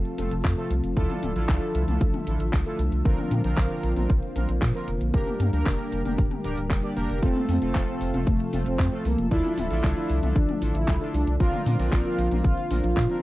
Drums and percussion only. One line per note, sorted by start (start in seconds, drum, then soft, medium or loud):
0.05 closed hi-hat soft
0.18 closed hi-hat loud
0.18 high tom medium
0.18 cabasa medium
0.31 closed hi-hat medium
0.31 cabasa soft
0.44 kick loud
0.44 clap loud
0.44 closed hi-hat medium
0.44 cabasa soft
0.57 closed hi-hat soft
0.57 cabasa soft
0.71 closed hi-hat medium
0.71 cabasa medium
0.84 closed hi-hat medium
0.84 cabasa soft
0.97 kick loud
0.97 closed hi-hat soft
0.97 cabasa soft
1.10 closed hi-hat soft
1.10 high tom medium
1.10 cabasa soft
1.23 closed hi-hat medium
1.23 high tom medium
1.23 cabasa medium
1.36 closed hi-hat soft
1.36 cabasa soft
1.49 kick loud
1.49 clap loud
1.49 closed hi-hat medium
1.49 cabasa soft
1.62 closed hi-hat soft
1.75 closed hi-hat medium
1.75 cabasa medium
1.88 closed hi-hat medium
1.88 high tom medium
1.88 cabasa soft
2.01 kick loud
2.01 closed hi-hat soft
2.01 cabasa soft
2.14 closed hi-hat soft
2.14 high tom medium
2.27 closed hi-hat medium
2.27 cabasa medium
2.40 closed hi-hat soft
2.40 cabasa soft
2.53 kick loud
2.53 clap loud
2.53 closed hi-hat soft
2.53 cabasa soft
2.66 closed hi-hat soft
2.66 cabasa soft
2.79 closed hi-hat medium
2.79 cabasa medium
2.92 closed hi-hat soft
2.92 cabasa soft
3.05 kick loud
3.05 closed hi-hat soft
3.05 cabasa soft
3.18 closed hi-hat soft
3.18 high tom medium
3.18 cabasa soft
3.31 closed hi-hat medium
3.31 high tom medium
3.31 cabasa medium
3.44 closed hi-hat soft
3.44 cabasa soft
3.57 kick loud
3.57 clap loud
3.57 closed hi-hat soft
3.57 cabasa soft
3.70 closed hi-hat soft
3.83 closed hi-hat medium
3.83 cabasa medium
3.96 closed hi-hat soft
3.96 high tom medium
3.96 cabasa soft
4.09 kick loud
4.09 closed hi-hat soft
4.09 cabasa soft
4.23 closed hi-hat soft
4.36 closed hi-hat medium
4.36 high tom medium
4.36 cabasa medium
4.49 closed hi-hat soft
4.49 cabasa soft
4.62 kick loud
4.62 clap loud
4.62 closed hi-hat soft
4.62 cabasa soft
4.75 closed hi-hat soft
4.75 cabasa soft
4.88 closed hi-hat medium
4.88 cabasa medium
5.01 closed hi-hat medium
5.01 cabasa soft
5.14 kick loud
5.14 closed hi-hat soft
5.14 cabasa soft
5.27 closed hi-hat soft
5.27 high tom medium
5.27 cabasa soft
5.40 closed hi-hat medium
5.40 high tom medium
5.40 cabasa medium
5.53 closed hi-hat soft
5.53 cabasa soft
5.66 kick loud
5.66 clap loud
5.66 closed hi-hat soft
5.66 cabasa soft
5.79 closed hi-hat soft
5.92 closed hi-hat medium
5.92 cabasa medium
6.05 closed hi-hat soft
6.05 high tom medium
6.05 cabasa soft
6.18 kick loud
6.18 closed hi-hat soft
6.18 cabasa soft
6.31 closed hi-hat soft
6.31 high tom medium
6.44 closed hi-hat medium
6.44 cabasa medium
6.57 closed hi-hat soft
6.57 cabasa soft
6.70 kick loud
6.70 clap loud
6.70 closed hi-hat soft
6.70 cabasa soft
6.83 closed hi-hat soft
6.83 cabasa soft
6.97 closed hi-hat medium
6.97 cabasa medium
7.10 closed hi-hat soft
7.10 cabasa soft
7.23 kick loud
7.23 closed hi-hat soft
7.23 cabasa soft
7.36 closed hi-hat soft
7.36 high tom medium
7.36 cabasa soft
7.49 open hi-hat loud
7.49 high tom medium
7.49 cabasa medium
7.62 closed hi-hat soft
7.62 cabasa soft
7.75 kick loud
7.75 clap loud
7.75 closed hi-hat soft
7.75 cabasa soft
7.88 closed hi-hat soft
8.01 open hi-hat loud
8.01 cabasa medium
8.14 closed hi-hat soft
8.14 high tom medium
8.14 cabasa soft
8.27 kick loud
8.27 closed hi-hat soft
8.27 cabasa soft
8.40 closed hi-hat soft
8.53 open hi-hat loud
8.53 high tom medium
8.53 cabasa medium
8.66 closed hi-hat soft
8.66 cabasa soft
8.79 kick loud
8.79 clap loud
8.79 open hi-hat medium
8.79 cabasa soft
8.92 closed hi-hat soft
8.92 cabasa soft
9.05 open hi-hat loud
9.05 cabasa medium
9.18 closed hi-hat soft
9.18 cabasa soft
9.31 kick loud
9.31 closed hi-hat medium
9.31 cabasa soft
9.45 closed hi-hat soft
9.45 high tom medium
9.45 cabasa soft
9.58 open hi-hat loud
9.58 high tom medium
9.58 cabasa medium
9.70 closed hi-hat soft
9.70 cabasa soft
9.84 kick loud
9.84 clap loud
9.84 closed hi-hat medium
9.84 cabasa soft
9.97 closed hi-hat soft
10.10 open hi-hat loud
10.10 cabasa medium
10.23 closed hi-hat soft
10.23 high tom medium
10.23 cabasa soft
10.36 kick loud
10.36 closed hi-hat soft
10.36 cabasa soft
10.49 closed hi-hat soft
10.49 high tom medium
10.62 open hi-hat loud
10.62 cabasa medium
10.75 closed hi-hat soft
10.75 cabasa soft
10.88 kick loud
10.88 clap loud
10.88 closed hi-hat soft
10.88 cabasa soft
11.01 closed hi-hat soft
11.01 cabasa soft
11.14 open hi-hat loud
11.14 cabasa medium
11.27 closed hi-hat soft
11.27 cabasa soft
11.40 kick loud
11.40 closed hi-hat medium
11.40 cabasa soft
11.53 closed hi-hat soft
11.53 high tom medium
11.53 cabasa soft
11.66 open hi-hat loud
11.66 high tom medium
11.66 cabasa medium
11.79 closed hi-hat medium
11.79 cabasa soft
11.92 kick loud
11.92 clap loud
11.92 closed hi-hat medium
11.92 cabasa soft
12.06 closed hi-hat soft
12.19 open hi-hat loud
12.19 cabasa medium
12.31 closed hi-hat medium
12.31 high tom medium
12.31 cabasa soft
12.44 kick loud
12.44 closed hi-hat soft
12.44 cabasa soft
12.58 closed hi-hat soft
12.71 open hi-hat loud
12.71 high tom medium
12.71 cabasa medium
12.84 closed hi-hat medium
12.84 cabasa soft
12.97 kick loud
12.97 clap loud
12.97 open hi-hat medium
12.97 cabasa soft
13.10 closed hi-hat soft
13.10 cabasa soft